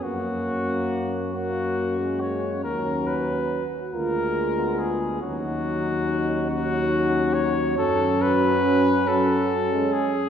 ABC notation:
X:1
M:6/8
L:1/16
Q:3/8=47
K:D#m
V:1 name="Cornet"
F6 F4 c2 | A2 B2 z2 A4 G2 | F6 F4 c2 | [K:F#m] A2 B4 A4 G2 |]
V:2 name="French horn section"
A,12 | F6 E6 | D12 | [K:F#m] C12 |]
V:3 name="Euphonium"
C6 C6 | C4- C z A,3 B,3 | C6 C6 | [K:F#m] C6 C4- C z |]
V:4 name="Trombone" clef=bass
A,6 A,3 G,3 | F,4- F, z G,6 | F,6 F,6 | [K:F#m] F,6 F,3 G,2 z |]
V:5 name="Tuba" clef=bass
F,,12 | D,,4 z2 =D,,6 | D,,12 | [K:F#m] F,,8- F,,2 z2 |]